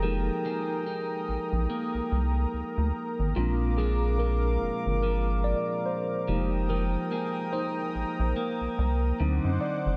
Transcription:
Already playing: F1 A#3 A4 A#4 G5 A#5 D#6
0.03 F3 G#3 A#3 D#4 G4 A#4
0.45 A#3 D#4 G#4
0.86 D#4
1.28 A#1
1.52 A#1
1.70 A#3
1.94 C2
2.12 C2
2.53 D2
2.77 D2
3.19 G#1
3.36 A#1 A#2 G#3 C4 D4 F4 F5 D6
3.78 F3 G#3 D4 G#4
4.19 G#3 A#4
4.62 G1
4.86 G1
5.02 F3 A#4
5.44 D5
5.86 C5
6.28 F1 F3 G#3 A#3 D#4 G4 G5 A#5 D#6
6.69 F3 A#4
7.11 A#3 D#4 G#4
7.53 D#4 C5
7.95 A#1
8.19 A#1
8.36 A#3
8.61 C2
8.78 C2
9.20 D2 D3 F#3 C4 D#4 C5 F#5 D6
9.44 F#2
9.61 D5
9.86 F#1

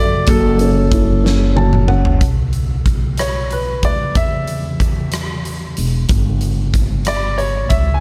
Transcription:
Already playing: F#2 F#3 D4 F#4 A4 D5
0.27 F#1 F#3 A4, kick, closed hi-hat
0.59 C#4, closed hi-hat
0.92 E4, kick, closed hi-hat
1.24 C#4, snare
1.56 F#3 A5, high tom
1.73 mid tom
1.88 C#4 F#5, mid tom
2.05 floor tom
2.21 B1, kick, closed hi-hat
2.53 closed hi-hat
2.86 kick, cross-stick, closed hi-hat
3.18 C#5, cross-stick, closed hi-hat
3.51 B4, closed hi-hat
3.83 D2 D5, kick, closed hi-hat
4.15 E2 E5, kick, closed hi-hat
4.47 closed hi-hat
4.80 kick, closed hi-hat
5.12 cross-stick, closed hi-hat
5.45 closed hi-hat
5.77 E1, closed hi-hat
6.09 G1, kick, closed hi-hat
6.41 closed hi-hat
6.74 kick, closed hi-hat
7.05 D5, cross-stick, closed hi-hat
7.38 C#5, closed hi-hat
7.69 C#2 E5, kick, closed hi-hat
7.94 G#5

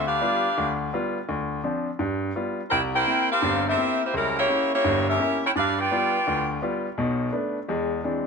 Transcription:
Already playing: D2
0.07 D4 G4 B4 F5
0.21 G3 B3 F4
0.58 D2
0.93 G3 B3 F4
1.29 D2
1.63 F3 C4 D4
1.99 G2
2.36 G3 B3 F4
2.70 C2 E4 A#4 C5 G5
2.94 E4 A#4 C5 G5
3.07 A#3 C4 E4
3.31 C4 G4 A#4 F5
3.42 G1 G2
3.69 C4 G4 A#4 E5
3.77 A#3 C4 E4
4.05 A#3 E4 G4 C5
4.14 C#2 G3 C#4 E4 A#4
4.39 A#3 E4 G4 C#5
4.49 A#3 C#4 E4
4.74 A#3 E4 G4 C#5
4.84 G1 G2
5.09 C#4 G4 A#4 E5
5.20 A#3 C#4 E4
5.46 E4 A#4 C#5 G5
5.56 G2 D4 G4 B4 F5
5.79 F4 B4 D5 G5
5.91 G3 B3 F4
6.27 D2
6.62 G3 B3 F4
6.98 B1 B2
7.32 A3 B3 D4
7.69 E2 G#3
8.04 E3 G#3 C4 D4

